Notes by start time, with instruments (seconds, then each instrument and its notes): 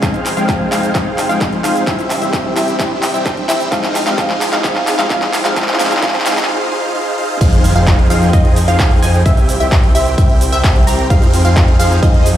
Already playing: analog synth pad G#3, riser
0.02 analog synth pad F2 C3 D#4 G5, clean electric guitar F3 G#3 C4 D#4, supersaw synth D#4 F4 G#4 C5 F5, synth pluck F5, kick, clap, closed hi-hat, shaker
0.14 closed hi-hat, shaker
0.26 clap, open hi-hat, shaker
0.36 clean electric guitar F3 G#3 C4 G5, supersaw synth D#4 F4 G#4 C5 F5, synth pluck F5, closed hi-hat, shaker
0.49 kick, clap, closed hi-hat, shaker
0.71 clean electric guitar F3 G#3 C4 D#4, supersaw synth D#4 F4 G#4 C5 F5, synth pluck F5, clap, open hi-hat, shaker
0.83 closed hi-hat, shaker
0.94 clean electric guitar F3 G#3 C4 D#4, synth pluck F5, kick, clap, closed hi-hat, shaker
1.18 clap, open hi-hat, shaker
1.29 clean electric guitar F3 G#3 C4 G5, supersaw synth D#4 F4 G#4 C5 F5, synth pluck F5, closed hi-hat, shaker
1.41 kick, clap, closed hi-hat, shaker
1.53 closed hi-hat
1.63 clean electric guitar F3 G#3 C4 D#4, supersaw synth D#4 F4 G#4 C5 F5, synth pluck F5, clap, open hi-hat, shaker
1.76 closed hi-hat, shaker
1.86 analog synth pad C2 G3 E4 G5, clean electric guitar E3 G3 C4 E4, synth pluck E5, kick, clap, closed hi-hat, shaker
1.99 closed hi-hat, shaker
2.10 clap, open hi-hat, shaker
2.21 clean electric guitar E3 G3 C4 G4, supersaw synth E4 G4 C5 E5, synth pluck E5, closed hi-hat, shaker
2.33 kick, clap, closed hi-hat, shaker
2.56 clean electric guitar E3 G3 C4 E4, supersaw synth E4 G4 C5 E5, synth pluck E5, clap, open hi-hat, shaker
2.68 closed hi-hat, shaker
2.79 clean electric guitar E3 G3 C4 E4, supersaw synth E4 G4 C5 E5, synth pluck E5, kick, clap, closed hi-hat, shaker
3.03 clap, open hi-hat, shaker
3.13 clean electric guitar E3 G3 C4 G4, supersaw synth E4 G4 C5 E5, synth pluck E5, closed hi-hat, shaker
3.26 kick, clap, closed hi-hat, shaker
3.37 closed hi-hat
3.48 clean electric guitar E3 G3 C4 E4, supersaw synth E4 G4 C5 E5, synth pluck E5, clap, open hi-hat, shaker
3.60 closed hi-hat, shaker
3.71 analog synth pad F2 G#3 D#4, clean electric guitar F3 G#3 C4 D#4, supersaw synth D#4 F4 G#4 C5 F5, synth pluck F5, kick, clap, closed hi-hat, shaker
3.84 clap, closed hi-hat, shaker
3.95 clap, open hi-hat, shaker
4.06 clean electric guitar F3 G#3 C4 G4, supersaw synth D#4 F4 G#4 C5 F5, synth pluck F5, clap, closed hi-hat, shaker
4.17 clean electric guitar F3 G#3 C4 D#4, supersaw synth D#4 F4 G#4 C5, synth pluck F5, kick, clap, closed hi-hat, shaker
4.30 clap
4.41 clap, open hi-hat, shaker
4.52 clean electric guitar F3 G#3 C4 G4, supersaw synth D#4 F4 G#4 C5 F5, synth pluck F5, clap, closed hi-hat, shaker
4.63 clean electric guitar F3 G#3 C4 D#4, supersaw synth D#4 G#4 C5, synth pluck F5, kick, clap, closed hi-hat, shaker
4.76 clap
4.87 clap, open hi-hat, shaker
4.98 clean electric guitar F3 G#3 C4 G4, supersaw synth D#4 F4 G#4 C5 F5, synth pluck F5, clap, closed hi-hat, shaker
5.09 clean electric guitar F3 G#3 C4 D#4, supersaw synth G#4, synth pluck F5, kick, clap, closed hi-hat, shaker
5.22 clap, closed hi-hat
5.33 clap, open hi-hat, shaker
5.44 clean electric guitar F3 G#3 C4 G4, supersaw synth D#4 F4 G#4 C5 F5, synth pluck F5, clap, closed hi-hat, shaker
5.56 analog synth pad C#2 C#3 F4 G#4, clean electric guitar F3 G#3 C4 D#4, supersaw synth F4 C5, synth pluck F5, kick, clap, closed hi-hat, shaker
5.62 clap
5.68 clap, closed hi-hat, shaker
5.74 clap
5.79 clean electric guitar F3 G#3 C4 D#4, supersaw synth D#4 F4 G#4 C5 F5, synth pluck F5, clap, open hi-hat, shaker
5.85 clap
5.91 clap, closed hi-hat, shaker
5.97 clap
6.02 clean electric guitar F3 G#3 C4 D#4, synth pluck F5, kick, clap, closed hi-hat, shaker
6.08 clap
6.14 clap, closed hi-hat
6.20 clap
6.25 clean electric guitar F3 G#3 C4 D#4, supersaw synth D#4 F4 G#4 C5 F5, synth pluck F5, clap, open hi-hat, shaker
6.31 clap
6.37 clap, closed hi-hat, shaker
6.43 clap
6.48 supersaw synth D#4 F4 G#4 C5 F5
6.71 supersaw synth D#4 F4 G#4 C5 F5
6.95 supersaw synth D#4 F4 G#4 C5 F5
7.18 supersaw synth D#4 F4 G#4 C5 F5
7.41 detuned saw bass F2, analog synth pad F3 C4 D#4 G#4 G5, supersaw synth D#4 F4 G#4 C5 F5, synth pluck F5, kick, closed hi-hat, crash, impact, shaker
7.53 closed hi-hat, shaker
7.64 open hi-hat, shaker
7.75 detuned saw bass F2, supersaw synth D#4 F4 G#4 C5 F5, synth pluck F5, closed hi-hat, shaker
7.87 kick, clap, closed hi-hat, shaker
7.99 closed hi-hat
8.10 detuned saw bass F2, supersaw synth D#4 F4 G#4 C5 F5, synth pluck F5, open hi-hat, shaker
8.22 closed hi-hat, shaker
8.33 detuned saw bass F2, supersaw synth D#4 F4 G#4 C5 D#5, synth pluck D#5, kick, closed hi-hat, shaker
8.45 closed hi-hat
8.56 open hi-hat, shaker
8.68 detuned saw bass F2, supersaw synth D#4 F4 G#4 C5 F5, synth pluck F5, closed hi-hat, shaker
8.79 kick, clap, closed hi-hat, shaker
8.91 closed hi-hat
9.02 detuned saw bass F2, supersaw synth D#4 F4 G#4 C5 G#5, synth pluck G#5, open hi-hat, shaker
9.14 closed hi-hat, shaker
9.25 detuned saw bass C2, analog synth pad C4 E4 G5, supersaw synth G4 C5 E5, synth pluck E5, kick, closed hi-hat, shaker
9.37 closed hi-hat, shaker
9.49 open hi-hat, shaker
9.60 detuned saw bass C2, supersaw synth G4 C5 E5, synth pluck E5, closed hi-hat, shaker
9.72 kick, clap, closed hi-hat, shaker
9.83 closed hi-hat
9.95 detuned saw bass C2, supersaw synth G4 C5 E5, synth pluck E5, open hi-hat, shaker
10.07 closed hi-hat, shaker
10.18 detuned saw bass C2, supersaw synth G4 C5 E5, synth pluck E5, kick, closed hi-hat, shaker
10.30 closed hi-hat
10.41 open hi-hat, shaker
10.52 detuned saw bass C2, supersaw synth G4 C5 E5, synth pluck E5, closed hi-hat, shaker
10.64 kick, clap, closed hi-hat, shaker
10.76 closed hi-hat
10.87 detuned saw bass C2, supersaw synth G4 C5 A#5, synth pluck A#5, open hi-hat, shaker
10.99 closed hi-hat, shaker
11.10 detuned saw bass F2, analog synth pad F3 D#4 G#4, supersaw synth D#4 F4 G#4 C5 F5, synth pluck F5, kick, closed hi-hat, shaker
11.22 closed hi-hat, shaker
11.34 open hi-hat, shaker
11.45 detuned saw bass F2, supersaw synth D#4 F4 G#4 C5 F5, synth pluck F5, closed hi-hat, shaker
11.56 kick, clap, closed hi-hat, shaker
11.68 closed hi-hat
11.79 detuned saw bass F2, supersaw synth D#4 F4 G#4 C5 F5, synth pluck F5, open hi-hat, shaker
11.91 closed hi-hat, shaker
12.02 detuned saw bass F2, supersaw synth D#4 F4 C5, synth pluck D#5, kick, closed hi-hat, shaker
12.14 closed hi-hat
12.26 open hi-hat, shaker